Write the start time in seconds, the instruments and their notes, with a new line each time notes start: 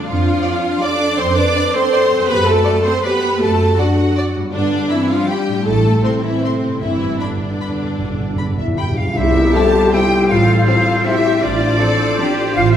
Already playing: harp F2 A3 C4
0.00 harp D4 A4
0.07 double bass section F2, cello section F3, french horn section D4, viola section F4, violin section F5
0.44 violin section D5
0.81 cello section D4, french horn section A4, violin section D5 D6, viola section D5
1.18 double bass section F2, cello section C4, french horn section A4, viola section C5, violin section C6
1.35 cello section D4, french horn section B4, viola section D5, violin section D6
1.55 violin section D5
1.73 cello section C4, french horn section A4, viola section C5, violin section C6
1.93 violin section D5
2.11 harp F#2
2.15 harp C4
2.20 harp D4
2.24 harp A4
2.28 double bass section F#2, cello section B3, french horn section G4, viola section B4, violin section B5
2.45 cello section A3, french horn section F#4, viola section A4, violin section A5
2.65 violin section D5
2.84 cello section C4, french horn section A4, viola section C5, violin section C6
3.03 cello section B3, french horn section G4, viola section B4, violin section D5 B5
3.40 double bass section F#2, cello section A3, french horn section F#4, viola section A4, violin section A5
3.77 cello section F#3, french horn section D4, viola section F#4, violin section D5 F#5
4.17 violin section D5
4.35 harp G2
4.40 harp B3
4.45 harp D4
4.49 double bass section G2, cello section D3, french horn section B3, viola section D4, harp F4, violin section D5
4.90 cello section E3, french horn section C4, viola section E4, violin section E5 B5
5.10 cello section F3, french horn section D4, viola section F4, violin section F5
5.29 cello section G3, french horn section D4, viola section G4, violin section G5 B5
5.48 harp A2
5.53 harp A3
5.57 harp C4
5.62 cello section A3, harp E4, viola section A4, violin section A5
5.66 double bass section A1, french horn section E4
6.03 cello section C3, french horn section A3, viola section C4, violin section C5 C6
6.23 cello section E3, french horn section C4, viola section E4, violin section E5
6.43 cello section C3, french horn section A3, viola section C4, violin section C5 C6
6.64 harp G2
6.68 harp B3
6.73 harp D4
6.77 harp G4, violin section E5
6.81 double bass section G1, timpani G2, cello section E3, french horn section C4, viola section E4
6.89 timpani G2
6.97 timpani G2
7.05 timpani G2
7.13 timpani G2
7.20 timpani G2, cello section D3, french horn section B3, viola section D4, violin section D5 B5
7.29 timpani G2
7.37 timpani G2
7.45 timpani G2
7.53 timpani G2
7.61 timpani G2, violin section B5
7.69 timpani G2
7.76 timpani G2
7.84 timpani G2
7.91 timpani G2
7.98 double bass section G1, timpani G2
8.06 timpani G2
8.13 timpani G2
8.20 timpani G2
8.28 timpani G2
8.35 timpani G2, violin section B5
8.44 timpani G2
8.52 timpani G2
8.57 timpani G2, french horn section E4, flute E5, violin section E5
8.67 timpani G2
8.75 timpani G2, french horn section G4, violin section G5 B5, flute G5
8.83 timpani G2
8.91 timpani G2
8.97 timpani G2, french horn section F4, flute F5, violin section F5
9.07 timpani G2
9.15 double bass section C2, harp C3, french horn section E4, cello section E4, clarinet G4, oboe C5, violin section E5, flute E5, tam-tam
9.35 harp C4
9.53 viola section G3 C4, harp G3, violin section E4 A5, cello section G4, french horn section A4, flute A5
9.75 harp G4
9.93 viola section G3 C4, cello section E4, violin section E4 G5, french horn section G4, harp C5, flute G5
10.13 harp G4
10.29 double bass section A1, harp A2, cello section F4, french horn section F4, clarinet A4, violin section F5, flute F5
10.48 harp C4
10.66 viola section F3 C4, harp A3, violin section C4 F5, french horn section F4, flute F5
10.87 harp A4
11.05 viola section F3 C4, violin section C4 E5, french horn section E4, cello section G4, harp C5, flute E5
11.24 harp A4
11.42 double bass section A1, harp A2, french horn section D4, clarinet F4, cello section F4, oboe C5, violin section D5, flute D5
11.61 harp C4
11.80 viola section F3 C4, violin section D4, cello section A4
11.99 harp F4
12.19 viola section F3 C4, violin section D4, cello section G4, harp C5
12.38 harp F4
12.55 double bass section A1, harp A2, french horn section F4, cello section F4, violin section F5, flute F5
12.73 violin section E5